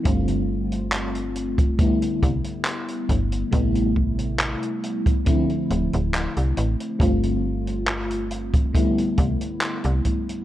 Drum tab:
HH |xx-xxxxxxxxxxxxx|xx-xxxxxxxxxxxxx|xx-xxxxxxxxxxxxx|
CP |----x-------x---|----x-------x---|----x-------x---|
BD |o------oo-o---o-|o-o----oo-------|o------oo-o---o-|